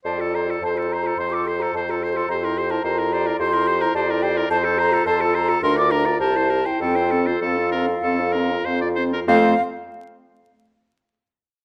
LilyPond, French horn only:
\new Staff \with { instrumentName = "French horn" } { \time 4/4 \key f \major \tempo 4 = 105 a'16 f'16 a'16 f'16 a'16 f'16 a'16 f'16 a'16 f'16 a'16 f'16 a'16 f'16 a'16 f'16 | g'16 e'16 g'16 e'16 g'16 e'16 g'16 e'16 g'16 e'16 g'16 e'16 g'16 e'16 g'16 e'16 | a'16 f'16 a'16 f'16 a'16 f'16 a'16 f'16 d'16 f'16 d'16 f'16 g'16 e'16 g'16 e'16 | c'16 f'16 c'16 f'16 c'16 f'16 c'16 f'16 c'16 f'16 c'16 f'16 c'16 f'16 c'16 f'16 |
a8 r2. r8 | }